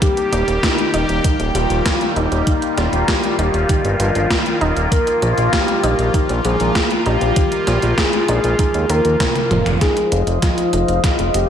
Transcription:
0.02 D#3 G3 A#3 G4, kick, closed hi-hat
0.17 closed hi-hat
0.33 D#1 G3, closed hi-hat
0.48 D#1, closed hi-hat
0.63 A#3 D#4, kick, snare, closed hi-hat
0.78 closed hi-hat
0.94 D#1 D#4, closed hi-hat
1.09 D#1, closed hi-hat
1.24 D#3, kick, closed hi-hat
1.40 D#1, closed hi-hat
1.55 D#1 G3 F4, closed hi-hat
1.70 D#1, closed hi-hat
1.86 A#3, kick, snare, closed hi-hat
2.01 closed hi-hat
2.16 D#1 D#4, closed hi-hat
2.32 D#1, closed hi-hat
2.47 D#3 F4, kick, closed hi-hat
2.62 closed hi-hat
2.78 D#1 G3, snare, closed hi-hat
2.93 D#1, closed hi-hat
3.08 A#3 G4, kick, snare, closed hi-hat
3.23 closed hi-hat
3.39 D#1 D#4, closed hi-hat
3.54 D#1, closed hi-hat
3.69 D#3, kick, closed hi-hat
3.85 G1, closed hi-hat
4.00 G1 G3 F4, closed hi-hat
4.15 G1, closed hi-hat
4.31 A#3, kick, snare, closed hi-hat
4.46 closed hi-hat
4.61 D#1 D#4, closed hi-hat
4.77 D#1, closed hi-hat
4.92 D#3 F3 A#4, kick, closed hi-hat
5.07 closed hi-hat
5.22 A#1 F3, closed hi-hat
5.38 A#1, closed hi-hat
5.53 A#3 G4, kick, snare, closed hi-hat
5.68 closed hi-hat
5.84 A#1 D#4, closed hi-hat
5.99 A#1, closed hi-hat
6.14 D#3, kick, closed hi-hat
6.29 A#1, closed hi-hat
6.45 A#1 F3 G#4, closed hi-hat
6.60 A#1, closed hi-hat
6.75 A#3, kick, snare, closed hi-hat
6.91 closed hi-hat
7.06 A#1 D#4 G4, closed hi-hat
7.21 A#1, closed hi-hat
7.36 D#3, kick, closed hi-hat
7.52 closed hi-hat
7.67 A#1 F3, snare, closed hi-hat
7.82 A#1, closed hi-hat
7.98 A#3 G#4, kick, snare, closed hi-hat
8.13 closed hi-hat
8.28 A#1 D#4, closed hi-hat
8.44 A#1, closed hi-hat
8.59 D#3, kick, closed hi-hat
8.74 D#2, closed hi-hat
8.89 D#2 A#4, closed hi-hat
9.05 D#2, closed hi-hat
9.20 F3, kick, snare, closed hi-hat, high tom
9.35 closed hi-hat, high tom
9.51 F1 F3, closed hi-hat, mid tom
9.66 F1, closed hi-hat, mid tom
9.81 D#3 F3 D#4 F4 G#4 C5 D#5 F5, kick, snare, closed hi-hat
9.97 closed hi-hat
10.12 F1 F3, closed hi-hat
10.27 F1, closed hi-hat
10.42 F4, kick, snare, closed hi-hat
10.58 closed hi-hat
10.73 F1 C4, closed hi-hat
10.88 F1, closed hi-hat
11.04 D#3, kick, snare, closed hi-hat
11.19 F1, closed hi-hat
11.34 F1 F3 G4, closed hi-hat

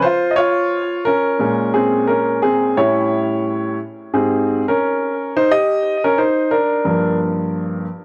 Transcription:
0.02 F4 C5
0.31 D#5
0.36 F4 C#5
1.05 C#4 A#4
1.39 A#2 G#3 C#4
1.74 C4 G#4
2.07 C#4 A#4
2.42 C4 G#4
2.77 A2 G3 C#4 E4 C#5
4.14 G#2 C4 G4 G#4
4.68 C#4 A#4
5.37 D#4 C5
5.51 G4 D#5
6.04 C#4 A#4
6.18 D#4 C5
6.51 D4 A#4
6.85 G2 F3 A#3

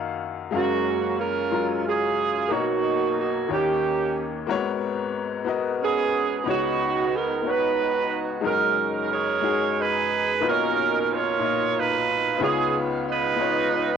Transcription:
Already playing: F#2 D#3 A#3 D#5 F5 F#5 A#5
0.51 F#1 F#2 G#3 C#4 F#4 A#4 F5
0.56 A#3 F#4
1.18 C#4 F4 A#4
1.50 F#3 G#3 F4 A#4
1.86 C#4 F4 G#4
2.48 B1 B2 A#3 D#4 F#4 A#4 C#5
3.18 F#4
3.47 D#2 D#3 A#3 D#4 F#4 C#5
3.52 A#3 C#4 G4
4.46 G#1 G#2 A#3 F#4 A#4 C#5
4.53 B3
5.45 B3 F#4 A#4 D#5
5.83 B3 C#4 G#4
6.44 C#2 C#3 B3 D#4 F#4 C#5
6.49 B3 D#4 F#4
7.16 A#4
7.42 B3 D#4 F#4
7.47 D#4 F#4 B4 C#5
8.41 F#1 F#2 G#3 D#4 F#4 A#4
8.46 C#4 A#4
9.11 G#4 A#4 C#5
9.41 G#3 D#4 F#4 G#4
9.79 D#4 G#4 B4
10.40 B1 B2 A#3 D#4 F4 B4
10.46 C#4 D#4 A#4 C#5
11.13 F4 A#4 C#5
11.39 A#2 D#4 F4 D#5
11.76 D#4 F4 B4
12.38 C#2 C#3 B3 D#4 F4 C#5
12.43 G#4
13.08 D#4 F4 B4
13.36 B3 D#4 F4
13.40 C#5

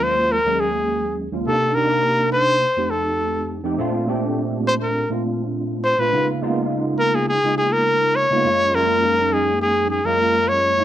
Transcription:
Already playing: D#2 F#3 G#3 A#3 C#4 F4
0.03 C5
0.32 A#4
0.44 D#2 F#3 G#3 A#3 C#4 G#4
0.60 G#4
1.31 D#2 F#3 G#3 A#3 C#4 F4
1.46 C3 A#3 D4 D#4 G4 A4
1.75 C3 A#3 D4 D#4 G4 A#4
2.32 C5
2.76 F2 A3 C4 D#4 G4
2.90 A4
3.63 F2 A3 C4 D#4 G4
3.78 A#2 A3 C4 D4 F4
4.07 A#2 A3 C4 D4 G4
4.67 C5
4.83 A#4
5.09 A#2 A3 C4 D4 F4
5.84 C5
5.98 A#2 A3 C4 D4 F4 B4
6.12 C#3 G#3 A#3 B3 D#4 F4
6.42 C#3 G#3 A#3 B3 D#4 F4
6.99 A#4
7.15 G#4
7.28 G#4
7.43 C#3 G#3 A#3 B3 D#4 F4
7.58 G#4
7.73 A#4
8.16 C#5
8.30 C#3 G#3 A#3 B3 D#4 F4
8.44 F#2 G#3 A#3 C#4 F4
8.73 F#2 G#3 A#3 C#4 F4 A#4
9.03 F#2 G#3 A#3 C#4 D#4
9.33 G#4
9.61 G#4
9.90 G#4
10.05 F#2 G#3 A#3 C#4 F4 A#4
10.48 C#5
10.77 F#2 G#3 A#3 C#4 D#4 E4

